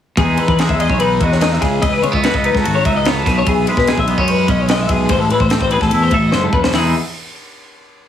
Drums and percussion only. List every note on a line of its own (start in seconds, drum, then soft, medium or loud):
0.17 kick medium
0.17 ride medium
0.37 ride medium
0.48 kick medium
0.59 snare medium
0.59 ride medium
0.69 kick medium
0.80 ride medium
0.90 kick medium
1.00 ride medium
1.21 kick medium
1.21 ride medium
1.32 snare soft
1.41 snare loud
1.41 ride medium
1.53 snare soft
1.62 kick medium
1.62 snare soft
1.62 ride medium
1.82 kick medium
1.82 ride medium
2.03 ride medium
2.13 kick medium
2.24 snare medium
2.24 ride medium
2.34 kick medium
2.44 ride medium
2.55 kick medium
2.55 snare soft
2.65 ride medium
2.85 kick medium
2.85 ride medium
3.05 snare loud
3.05 ride medium
3.26 kick medium
3.26 snare soft
3.26 ride medium
3.46 kick medium
3.46 ride medium
3.67 ride medium
3.77 kick medium
3.77 snare soft
3.87 snare medium
3.87 ride medium
3.98 kick medium
4.08 ride medium
4.18 kick medium
4.28 ride medium
4.48 kick medium
4.48 ride medium
4.69 snare medium
4.69 ride medium
4.89 kick medium
4.89 ride medium
5.09 kick loud
5.09 ride medium
5.30 ride medium
5.40 kick medium
5.50 snare medium
5.50 ride medium
5.61 kick medium
5.71 ride medium
5.81 kick medium
5.81 snare soft
5.91 ride medium
6.11 kick medium
6.11 ride medium
6.32 snare medium
6.53 kick medium
6.64 snare medium
6.73 snare medium
6.73 open hi-hat medium